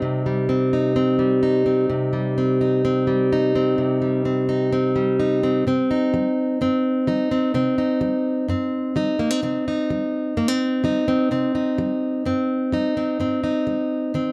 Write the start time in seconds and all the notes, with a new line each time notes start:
Already playing: G3 C4 D#4
0.02 C3
0.26 G3
0.49 C4
0.73 D#4
0.96 C4
1.19 G3
1.43 D#4
1.66 C4
1.90 C3
2.13 G3
2.38 C4
2.61 D#4
2.85 C4
3.07 G3
3.33 D#4
3.55 C4
3.78 C3
4.02 G3
4.25 C4
4.49 D#4
4.73 C4
4.96 G3
5.20 D#4
5.43 C4
5.67 C3 C4
5.91 D#4
6.14 G3
6.61 G2 C4
7.07 G3 D#4
7.31 C4
7.54 C3 C4
7.78 D#4
8.01 G3
8.48 G2 C4
8.96 G3 D#4
9.19 A#3
9.31 C4
9.43 C3 C4
9.68 D#4
9.90 G3
10.37 G2 A#3
10.48 C4
10.84 G3 D#4
11.08 C4
11.31 C3 C4
11.55 D#4
11.78 G3
12.25 G2 C4
12.72 G3 D#4
12.97 C4
13.20 G#2 C4
13.44 D#4
13.67 G#3
14.14 D#3 C4